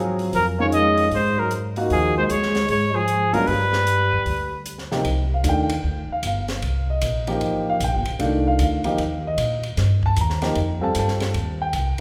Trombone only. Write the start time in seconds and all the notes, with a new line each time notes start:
0.33 F3
0.58 A#3
0.72 G#3
1.11 G#3
1.37 F#3
1.91 F3
2.16 G#3
2.24 G#3
2.69 G#3
2.95 F3
3.33 F#3
3.47 G3